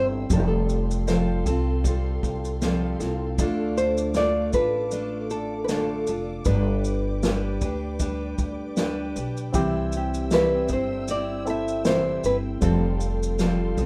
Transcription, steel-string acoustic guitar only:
0.00 0.29 G3 soft
0.00 0.30 C4 soft
0.00 0.31 E4 soft
0.00 0.30 C5 medium
0.30 1.07 F3 medium
0.30 1.06 G3 medium
0.30 1.07 C4 medium
0.30 1.08 F4 medium
0.30 1.08 A4 medium
1.07 1.46 F3 medium
1.07 1.46 G3 medium
1.07 1.46 C4 medium
1.07 1.47 F4 medium
1.07 1.45 A4 loud
1.46 1.84 C4 medium
1.46 1.85 F4 medium
1.46 1.85 A4 medium
1.84 2.61 G3 medium
1.84 2.62 C4 medium
1.84 2.63 F4 medium
1.84 2.64 A4 medium
2.62 3.00 F3 medium
2.62 3.00 G3 medium
2.62 3.01 C4 medium
2.62 3.00 F4 loud
2.62 2.98 A4 loud
3.00 3.39 C4 soft
3.00 3.39 F4 medium
3.00 3.38 A4 medium
3.38 4.15 D3 medium
3.38 4.15 A3 loud
3.38 4.16 D4 loud
3.38 4.16 F4 loud
3.38 4.16 A4 medium
4.15 4.54 D3 medium
4.15 4.54 A3 medium
4.15 4.54 D4 medium
4.15 4.55 F4 medium
4.15 4.52 A4 medium
4.54 4.92 D4 soft
4.54 4.93 F4 medium
4.54 4.92 A4 medium
4.92 5.69 A3 medium
4.92 5.70 D4 medium
4.92 5.69 F4 medium
4.92 5.70 A4 medium
5.69 6.08 D3 medium
5.69 6.08 A3 medium
5.69 6.08 D4 medium
5.69 6.08 F4 medium
5.69 6.07 A4 medium
6.08 6.46 D4 soft
6.08 6.47 F4 soft
6.08 6.46 A4 medium
6.46 7.24 G3 medium
6.46 7.24 D4 medium
6.46 7.25 G4 medium
6.46 7.24 B4 medium
7.24 7.62 G3 medium
7.24 7.63 D4 medium
7.24 7.62 G4 medium
7.24 7.61 B4 medium
7.62 7.99 D4 soft
7.62 8.01 G4 medium
7.62 8.00 B4 medium
7.99 8.77 G3 medium
7.99 8.77 D4 medium
7.99 8.78 G4 medium
7.99 8.78 B4 medium
8.77 9.16 G3 medium
8.77 9.16 D4 medium
8.77 9.16 G4 loud
8.77 9.15 B4 loud
9.16 9.55 D4 soft
9.16 9.55 G4 medium
9.16 9.54 B4 medium
9.54 10.30 C3 medium
9.54 10.30 E3 medium
9.54 10.31 G3 medium
9.54 10.32 C4 medium
9.54 10.32 E4 medium
9.54 10.69 C5 medium
10.31 10.70 C3 medium
10.31 10.70 E3 medium
10.31 10.70 G3 medium
10.31 10.70 C4 medium
10.31 10.70 E4 medium
10.70 11.07 G3 medium
10.70 11.08 C4 soft
10.70 11.09 E4 medium
10.70 11.08 C5 medium
11.08 11.85 G3 medium
11.08 11.86 C4 medium
11.08 11.85 E4 medium
11.08 11.86 C5 medium
11.85 12.23 C3 medium
11.85 12.24 E3 medium
11.85 12.24 G3 medium
11.85 12.24 C4 medium
11.85 12.24 E4 medium
11.85 12.24 C5 medium
12.25 12.61 G3 soft
12.25 12.61 C4 soft
12.25 12.63 E4 medium
12.62 13.39 F3 medium
12.62 13.39 G3 medium
12.62 13.38 C4 medium
12.62 13.40 F4 medium
12.62 13.40 A4 medium
13.39 13.77 F3 medium
13.39 13.78 G3 medium
13.39 13.78 C4 medium
13.39 13.78 F4 medium
13.39 13.77 A4 medium
13.78 13.86 C4 medium
13.78 13.86 F4 medium
13.78 13.86 A4 medium

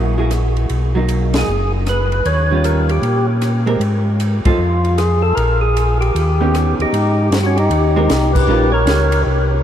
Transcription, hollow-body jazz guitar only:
0.00 0.15 F#3 medium
0.00 0.15 A#3 medium
0.00 0.15 E4 medium
0.00 0.15 G#4 medium
0.18 0.30 F#3 medium
0.18 0.30 A#3 medium
0.18 0.30 E4 medium
0.18 0.30 G#4 medium
0.95 1.45 F#3 medium
0.95 1.46 A#3 medium
0.95 1.46 D#4 medium
2.51 3.01 D#3 soft
2.51 3.01 G3 medium
2.51 3.01 C#4 medium
2.51 3.02 F4 medium
3.66 3.79 G#3 medium
3.66 3.80 C4 medium
3.66 3.80 G4 medium
3.66 3.80 A#4 medium
4.45 4.58 F3 soft
4.45 4.58 C4 medium
4.45 4.59 D#4 medium
4.45 4.59 A4 medium
6.41 6.91 D#3 medium
6.41 6.91 B3 medium
6.41 6.91 C#4 medium
6.41 6.91 G4 medium
7.96 8.09 G#3 medium
7.96 8.09 C4 medium
7.96 8.09 G4 medium
7.96 8.09 A#4 medium
8.48 8.71 G3 medium
8.48 8.71 C#4 medium
8.48 8.72 F4 medium
8.48 8.72 A#4 medium

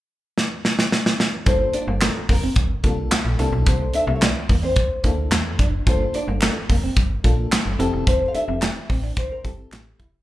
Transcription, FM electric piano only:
1.46 2.19 A#3 medium
1.46 2.19 D4 medium
1.46 2.19 F4 medium
1.46 2.19 A4 medium
2.84 3.38 A#3 medium
2.84 3.38 D4 medium
2.84 3.39 F4 medium
2.84 3.38 A4 medium
3.39 4.27 A#3 medium
3.39 4.27 D4 medium
3.39 4.27 E4 medium
3.39 4.27 A4 loud
5.04 5.59 A#3 medium
5.04 5.59 D4 medium
5.04 5.59 E4 medium
5.04 5.59 A4 medium
5.86 6.59 A#3 medium
5.86 6.59 D4 medium
5.86 6.60 F4 medium
5.86 6.60 A4 medium
7.24 7.79 A#3 medium
7.24 7.79 D4 medium
7.24 7.79 F4 medium
7.24 7.79 A4 medium
7.79 8.67 C4 medium
7.79 8.68 E4 medium
7.79 8.68 G4 medium
7.79 8.68 A4 loud
9.44 9.99 C4 medium
9.44 9.99 E4 medium
9.44 9.99 G4 medium
9.44 9.99 A4 medium

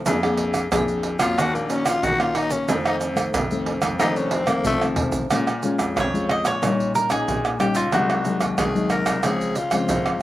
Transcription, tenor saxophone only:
1.20 1.40 F4 medium
1.38 1.56 F#4 loud
1.55 1.72 A#3 medium
1.71 1.87 C#4 medium
1.86 2.05 F4 medium
2.03 2.22 F#4 medium
2.20 2.38 F4 medium
2.36 2.53 D#4 loud
2.52 2.71 C#4 medium
2.69 2.86 C4 medium
2.87 2.96 D#4 medium
4.01 4.19 D#4 medium
4.17 4.34 C#4 medium
4.32 4.49 C4 medium
4.48 4.65 A#3 medium
4.66 4.86 A3 medium
8.59 8.89 G#4 medium
8.91 9.25 A#4 medium
9.24 9.59 G#4 loud
9.57 10.21 F4 medium

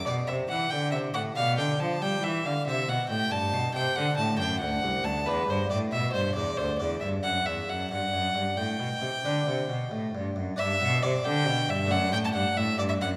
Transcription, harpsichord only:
0.06 0.26 B2 medium
0.06 1.33 D4 medium
0.06 1.33 G4 soft
0.29 0.48 C3 medium
0.51 0.70 E3 medium
0.72 0.91 D3 medium
0.94 1.13 C3 medium
1.15 1.34 A2 medium
1.37 1.56 B2 medium
1.37 2.63 D4 soft
1.37 2.63 G4 medium
1.58 1.77 D3 medium
1.80 1.99 F3 medium
2.02 2.21 G3 medium
2.22 2.42 E3 medium
2.45 2.65 D3 medium
2.68 2.87 C3 medium
2.68 3.94 C4 medium
2.68 3.94 C5 medium
2.89 3.08 B2 medium
3.10 3.30 A2 medium
3.31 3.51 G2 medium
3.54 3.73 B2 medium
3.75 3.95 C3 medium
3.97 4.17 D3 medium
3.97 5.23 C4 medium
3.97 5.24 A4 medium
4.19 4.38 A2 medium
4.40 4.60 F#2 medium
4.62 4.81 D2 medium
4.83 5.03 C2 medium
5.04 5.24 D2 medium
5.26 5.46 E2 medium
5.26 5.67 B3 medium
5.26 6.55 G4 medium
5.48 5.68 G2 medium
5.70 5.90 A2 medium
5.93 6.13 B2 medium
6.14 6.34 G2 medium
6.36 6.56 E2 medium
6.58 6.77 D2 medium
6.58 7.87 D4 soft
6.58 7.87 A4 soft
6.80 7.00 E2 medium
7.02 7.22 G2 medium
7.25 7.44 F#2 medium
7.47 7.67 E2 medium
7.69 7.89 F#2 medium
7.91 8.11 G2 medium
8.14 8.34 F#2 medium
8.35 8.55 G2 medium
8.57 8.78 A2 medium
8.80 9.00 B2 medium
9.01 9.22 C3 medium
9.25 9.45 D3 medium
9.25 10.21 D4 soft
9.25 10.21 B4 medium
9.47 9.67 C3 medium
9.70 9.90 B2 medium
9.91 10.12 A2 medium
10.15 10.34 G2 medium
10.36 10.56 F#2 medium
10.56 10.79 G2 medium
10.56 11.86 D4 medium
10.56 11.86 B4 medium
10.81 11.01 B2 medium
11.02 11.22 C3 medium
11.25 11.45 D3 medium
11.47 11.67 B2 medium
11.69 11.89 G2 medium
11.86 12.31 A3 medium
11.86 13.17 D4 medium
11.86 13.17 A4 medium
11.91 12.11 F#2 medium
12.13 12.33 A2 medium
12.35 12.55 G2 medium
12.58 12.77 A2 medium
12.79 12.99 G2 medium
13.02 13.17 F#2 medium

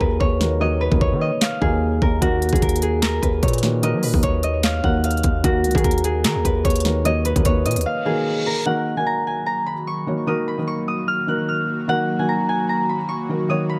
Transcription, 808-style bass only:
0.01 0.20 D#2 loud
0.21 0.89 D#2 loud
0.92 1.13 D#2 loud
1.12 1.31 D#3 loud
1.62 2.00 D#2 loud
2.02 2.21 D#2 loud
2.22 2.52 D#2 loud
2.53 3.20 D#2 loud
3.23 3.42 D#2 loud
3.43 3.95 A#2 loud
3.94 4.05 F#3 loud
4.03 4.13 A#2 loud
4.14 4.81 D#2 loud
4.84 5.22 D#2 loud
5.24 5.43 D#2 loud
5.44 5.66 D#2 loud
5.64 5.74 C#2 loud
5.75 5.84 D#3 loud
5.84 6.26 D#2 loud
6.25 6.37 D#3 medium
6.35 6.44 D#2 loud
6.45 6.64 D#2 loud
6.65 7.33 D#2 loud
7.36 7.45 D#2 loud
7.45 7.67 D#2 loud
7.66 7.78 A#2 loud
7.76 7.85 D#2 loud

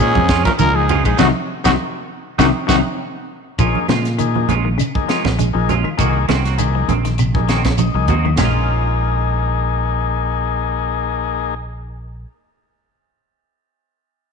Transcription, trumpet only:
0.00 0.42 G#4 loud
0.45 0.51 A#4 medium
0.59 0.77 A#4 loud
0.76 1.05 G#4 loud
1.06 1.18 G#4 medium
1.19 1.27 F#4 loud
1.65 1.72 F#4 loud
2.39 2.47 F#4 loud
2.68 2.76 F#4 loud

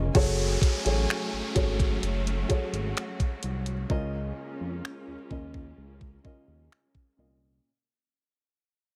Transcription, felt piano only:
0.00 0.17 C#3 medium
0.00 0.17 C#4 medium
0.00 0.17 F4 medium
0.00 0.17 A#4 medium
0.00 0.16 C#5 medium
0.00 0.17 D#5 medium
0.14 0.76 F#3 loud
0.14 0.77 F#4 loud
0.14 0.77 G#4 loud
0.14 0.77 A4 loud
0.14 0.77 C#5 loud
0.84 1.46 F#3 medium
0.84 1.47 F#4 medium
0.84 1.47 G#4 medium
0.84 1.47 A4 medium
0.84 1.48 C#5 medium
1.54 2.37 F#3 medium
1.54 2.37 F#4 medium
1.54 2.38 G#4 medium
1.54 2.38 A4 medium
1.54 2.38 C#5 medium
2.48 3.72 F#3 medium
2.48 3.72 F#4 medium
2.48 3.73 G#4 medium
2.48 3.73 A4 medium
2.48 3.73 C#5 medium
3.89 5.13 C#3 loud
3.89 5.13 C#4 loud
3.89 5.13 F4 loud
3.89 5.14 A#4 loud
3.89 5.14 D#5 loud
5.29 6.12 C#3 medium
5.29 6.13 C#4 medium
5.29 6.13 F4 medium
5.29 6.13 A#4 medium
5.29 6.13 D#5 medium
6.23 7.06 C#3 medium
6.23 7.06 C#4 medium
6.23 7.07 F4 medium
6.23 7.07 A#4 medium
6.23 7.07 D#5 medium
7.17 7.59 A#2 medium
7.17 7.59 C#4 medium
7.17 7.59 F4 medium
7.17 7.59 A#4 medium
7.17 7.60 D#5 medium

